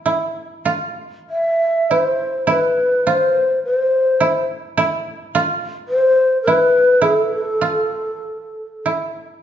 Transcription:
0, 0, Header, 1, 3, 480
1, 0, Start_track
1, 0, Tempo, 1217039
1, 23, Time_signature, 2, 2, 24, 8
1, 983, Tempo, 1134216
1, 2903, Tempo, 1224490
1, 3843, End_track
2, 0, Start_track
2, 0, Title_t, "Shakuhachi"
2, 0, Program_c, 0, 77
2, 512, Note_on_c, 0, 76, 64
2, 753, Note_on_c, 0, 72, 65
2, 759, Note_off_c, 0, 76, 0
2, 982, Note_off_c, 0, 72, 0
2, 984, Note_on_c, 0, 71, 60
2, 1226, Note_on_c, 0, 72, 61
2, 1233, Note_off_c, 0, 71, 0
2, 1469, Note_off_c, 0, 72, 0
2, 1473, Note_on_c, 0, 72, 61
2, 1813, Note_off_c, 0, 72, 0
2, 2418, Note_on_c, 0, 72, 79
2, 2642, Note_off_c, 0, 72, 0
2, 2650, Note_on_c, 0, 71, 70
2, 2901, Note_on_c, 0, 68, 68
2, 2907, Note_off_c, 0, 71, 0
2, 2944, Note_off_c, 0, 68, 0
2, 2944, Note_on_c, 0, 69, 68
2, 3620, Note_off_c, 0, 69, 0
2, 3843, End_track
3, 0, Start_track
3, 0, Title_t, "Koto"
3, 0, Program_c, 1, 107
3, 22, Note_on_c, 1, 64, 54
3, 258, Note_on_c, 1, 65, 54
3, 282, Note_off_c, 1, 64, 0
3, 753, Note_on_c, 1, 64, 50
3, 776, Note_off_c, 1, 65, 0
3, 973, Note_off_c, 1, 64, 0
3, 974, Note_on_c, 1, 64, 59
3, 1226, Note_on_c, 1, 65, 54
3, 1252, Note_off_c, 1, 64, 0
3, 1708, Note_on_c, 1, 64, 63
3, 1733, Note_off_c, 1, 65, 0
3, 1947, Note_off_c, 1, 64, 0
3, 1949, Note_on_c, 1, 64, 62
3, 2192, Note_on_c, 1, 65, 66
3, 2217, Note_off_c, 1, 64, 0
3, 2668, Note_on_c, 1, 64, 54
3, 2693, Note_off_c, 1, 65, 0
3, 2896, Note_off_c, 1, 64, 0
3, 2897, Note_on_c, 1, 64, 60
3, 3132, Note_on_c, 1, 65, 55
3, 3156, Note_off_c, 1, 64, 0
3, 3619, Note_on_c, 1, 64, 46
3, 3643, Note_off_c, 1, 65, 0
3, 3843, Note_off_c, 1, 64, 0
3, 3843, End_track
0, 0, End_of_file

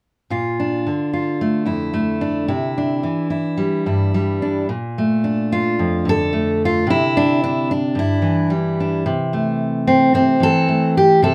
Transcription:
0, 0, Header, 1, 2, 480
1, 0, Start_track
1, 0, Tempo, 546448
1, 271, Time_signature, 4, 2, 24, 8
1, 9965, End_track
2, 0, Start_track
2, 0, Title_t, "Steel-string acoustic guitar"
2, 0, Program_c, 0, 25
2, 267, Note_on_c, 0, 46, 50
2, 274, Note_on_c, 0, 65, 48
2, 524, Note_on_c, 0, 62, 42
2, 751, Note_off_c, 0, 46, 0
2, 760, Note_on_c, 0, 50, 44
2, 986, Note_off_c, 0, 65, 0
2, 997, Note_on_c, 0, 65, 42
2, 1240, Note_on_c, 0, 57, 41
2, 1454, Note_on_c, 0, 41, 43
2, 1457, Note_off_c, 0, 65, 0
2, 1461, Note_on_c, 0, 64, 44
2, 1690, Note_off_c, 0, 57, 0
2, 1700, Note_on_c, 0, 57, 47
2, 1939, Note_off_c, 0, 62, 0
2, 1943, Note_on_c, 0, 62, 48
2, 2151, Note_off_c, 0, 41, 0
2, 2155, Note_off_c, 0, 57, 0
2, 2170, Note_off_c, 0, 64, 0
2, 2181, Note_on_c, 0, 48, 54
2, 2182, Note_on_c, 0, 64, 51
2, 2207, Note_off_c, 0, 62, 0
2, 2439, Note_on_c, 0, 62, 47
2, 2661, Note_off_c, 0, 50, 0
2, 2664, Note_off_c, 0, 48, 0
2, 2665, Note_on_c, 0, 52, 47
2, 2890, Note_off_c, 0, 64, 0
2, 2901, Note_on_c, 0, 64, 45
2, 3140, Note_on_c, 0, 55, 46
2, 3383, Note_off_c, 0, 64, 0
2, 3392, Note_on_c, 0, 43, 50
2, 3397, Note_on_c, 0, 64, 44
2, 3626, Note_off_c, 0, 55, 0
2, 3640, Note_on_c, 0, 55, 48
2, 3873, Note_off_c, 0, 62, 0
2, 3884, Note_on_c, 0, 62, 46
2, 4085, Note_off_c, 0, 52, 0
2, 4090, Note_off_c, 0, 43, 0
2, 4092, Note_off_c, 0, 62, 0
2, 4119, Note_on_c, 0, 46, 58
2, 4121, Note_off_c, 0, 55, 0
2, 4121, Note_off_c, 0, 64, 0
2, 4377, Note_on_c, 0, 57, 39
2, 4603, Note_on_c, 0, 62, 41
2, 4853, Note_on_c, 0, 65, 72
2, 5083, Note_off_c, 0, 46, 0
2, 5088, Note_on_c, 0, 41, 53
2, 5316, Note_on_c, 0, 50, 49
2, 5329, Note_off_c, 0, 65, 0
2, 5351, Note_on_c, 0, 69, 87
2, 5548, Note_off_c, 0, 57, 0
2, 5559, Note_on_c, 0, 57, 42
2, 5815, Note_off_c, 0, 69, 0
2, 5844, Note_on_c, 0, 65, 78
2, 6009, Note_off_c, 0, 57, 0
2, 6012, Note_off_c, 0, 62, 0
2, 6014, Note_off_c, 0, 41, 0
2, 6032, Note_on_c, 0, 48, 60
2, 6061, Note_off_c, 0, 65, 0
2, 6064, Note_on_c, 0, 64, 87
2, 6297, Note_on_c, 0, 62, 74
2, 6521, Note_off_c, 0, 62, 0
2, 6532, Note_on_c, 0, 62, 75
2, 6761, Note_off_c, 0, 62, 0
2, 6769, Note_off_c, 0, 64, 0
2, 6772, Note_on_c, 0, 62, 63
2, 6984, Note_on_c, 0, 43, 55
2, 6991, Note_off_c, 0, 48, 0
2, 7018, Note_on_c, 0, 64, 68
2, 7216, Note_off_c, 0, 50, 0
2, 7219, Note_on_c, 0, 52, 51
2, 7468, Note_on_c, 0, 55, 43
2, 7479, Note_off_c, 0, 62, 0
2, 7733, Note_on_c, 0, 62, 39
2, 7916, Note_off_c, 0, 43, 0
2, 7932, Note_off_c, 0, 62, 0
2, 7948, Note_off_c, 0, 55, 0
2, 7957, Note_on_c, 0, 48, 66
2, 7962, Note_off_c, 0, 64, 0
2, 8197, Note_on_c, 0, 57, 41
2, 8674, Note_on_c, 0, 60, 73
2, 8896, Note_off_c, 0, 48, 0
2, 8904, Note_off_c, 0, 60, 0
2, 8906, Note_on_c, 0, 48, 51
2, 8915, Note_on_c, 0, 60, 80
2, 9132, Note_off_c, 0, 52, 0
2, 9136, Note_on_c, 0, 52, 50
2, 9145, Note_off_c, 0, 48, 0
2, 9163, Note_on_c, 0, 69, 97
2, 9375, Note_off_c, 0, 57, 0
2, 9386, Note_on_c, 0, 57, 44
2, 9629, Note_off_c, 0, 60, 0
2, 9634, Note_off_c, 0, 69, 0
2, 9640, Note_on_c, 0, 67, 84
2, 9831, Note_off_c, 0, 52, 0
2, 9836, Note_off_c, 0, 57, 0
2, 9860, Note_on_c, 0, 48, 64
2, 9867, Note_off_c, 0, 67, 0
2, 9870, Note_on_c, 0, 69, 90
2, 9965, Note_off_c, 0, 48, 0
2, 9965, Note_off_c, 0, 69, 0
2, 9965, End_track
0, 0, End_of_file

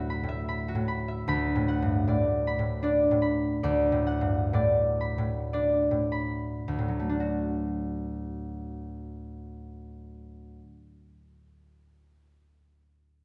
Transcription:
0, 0, Header, 1, 2, 480
1, 0, Start_track
1, 0, Key_signature, 2, "major"
1, 0, Tempo, 795756
1, 761, Time_signature, 3, 2, 24, 8
1, 2194, Tempo, 892857
1, 2674, Tempo, 1011804
1, 3154, Tempo, 1153846
1, 6358, End_track
2, 0, Start_track
2, 0, Title_t, "Harp"
2, 0, Program_c, 0, 46
2, 0, Note_on_c, 0, 38, 53
2, 0, Note_on_c, 0, 45, 40
2, 0, Note_on_c, 0, 54, 46
2, 0, Note_on_c, 0, 62, 49
2, 0, Note_on_c, 0, 66, 45
2, 0, Note_on_c, 0, 74, 47
2, 0, Note_on_c, 0, 76, 46
2, 59, Note_on_c, 0, 83, 44
2, 134, Note_off_c, 0, 45, 0
2, 142, Note_on_c, 0, 45, 37
2, 165, Note_off_c, 0, 76, 0
2, 173, Note_on_c, 0, 76, 42
2, 285, Note_off_c, 0, 83, 0
2, 293, Note_on_c, 0, 83, 48
2, 405, Note_off_c, 0, 66, 0
2, 412, Note_on_c, 0, 66, 43
2, 445, Note_off_c, 0, 45, 0
2, 452, Note_on_c, 0, 45, 41
2, 522, Note_off_c, 0, 83, 0
2, 530, Note_on_c, 0, 83, 45
2, 646, Note_off_c, 0, 76, 0
2, 653, Note_on_c, 0, 76, 43
2, 764, Note_off_c, 0, 38, 0
2, 766, Note_off_c, 0, 83, 0
2, 769, Note_on_c, 0, 38, 57
2, 774, Note_on_c, 0, 83, 67
2, 786, Note_off_c, 0, 76, 0
2, 788, Note_off_c, 0, 45, 0
2, 938, Note_on_c, 0, 45, 43
2, 1015, Note_on_c, 0, 78, 50
2, 1057, Note_off_c, 0, 54, 0
2, 1100, Note_on_c, 0, 43, 41
2, 1247, Note_off_c, 0, 45, 0
2, 1248, Note_off_c, 0, 74, 0
2, 1252, Note_on_c, 0, 45, 43
2, 1257, Note_on_c, 0, 74, 48
2, 1357, Note_off_c, 0, 43, 0
2, 1361, Note_off_c, 0, 62, 0
2, 1484, Note_off_c, 0, 83, 0
2, 1491, Note_on_c, 0, 83, 46
2, 1554, Note_off_c, 0, 45, 0
2, 1561, Note_on_c, 0, 45, 41
2, 1701, Note_off_c, 0, 74, 0
2, 1705, Note_on_c, 0, 62, 43
2, 1711, Note_on_c, 0, 74, 48
2, 1869, Note_off_c, 0, 45, 0
2, 1877, Note_on_c, 0, 45, 41
2, 1934, Note_off_c, 0, 83, 0
2, 1941, Note_on_c, 0, 83, 47
2, 2184, Note_off_c, 0, 74, 0
2, 2186, Note_off_c, 0, 38, 0
2, 2191, Note_on_c, 0, 74, 53
2, 2194, Note_on_c, 0, 38, 56
2, 2340, Note_off_c, 0, 45, 0
2, 2346, Note_on_c, 0, 45, 44
2, 2418, Note_off_c, 0, 78, 0
2, 2425, Note_on_c, 0, 78, 53
2, 2502, Note_on_c, 0, 43, 40
2, 2670, Note_off_c, 0, 45, 0
2, 2672, Note_off_c, 0, 74, 0
2, 2675, Note_on_c, 0, 45, 44
2, 2679, Note_on_c, 0, 74, 50
2, 2699, Note_off_c, 0, 66, 0
2, 2777, Note_off_c, 0, 43, 0
2, 2894, Note_off_c, 0, 83, 0
2, 2900, Note_on_c, 0, 83, 49
2, 2977, Note_off_c, 0, 45, 0
2, 2982, Note_on_c, 0, 45, 44
2, 3143, Note_off_c, 0, 74, 0
2, 3146, Note_off_c, 0, 62, 0
2, 3149, Note_on_c, 0, 74, 46
2, 3152, Note_on_c, 0, 62, 44
2, 3302, Note_off_c, 0, 45, 0
2, 3307, Note_on_c, 0, 45, 41
2, 3389, Note_off_c, 0, 83, 0
2, 3394, Note_on_c, 0, 83, 42
2, 3622, Note_off_c, 0, 38, 0
2, 3627, Note_on_c, 0, 38, 37
2, 3652, Note_off_c, 0, 45, 0
2, 3655, Note_off_c, 0, 83, 0
2, 3672, Note_on_c, 0, 45, 31
2, 3712, Note_on_c, 0, 54, 31
2, 3758, Note_on_c, 0, 57, 33
2, 3795, Note_off_c, 0, 62, 0
2, 3800, Note_on_c, 0, 62, 33
2, 3844, Note_on_c, 0, 66, 31
2, 4163, Note_off_c, 0, 78, 0
2, 4772, Note_off_c, 0, 74, 0
2, 5248, Note_off_c, 0, 54, 0
2, 5249, Note_off_c, 0, 38, 0
2, 5286, Note_off_c, 0, 57, 0
2, 5294, Note_off_c, 0, 45, 0
2, 5327, Note_off_c, 0, 62, 0
2, 5371, Note_off_c, 0, 66, 0
2, 6358, End_track
0, 0, End_of_file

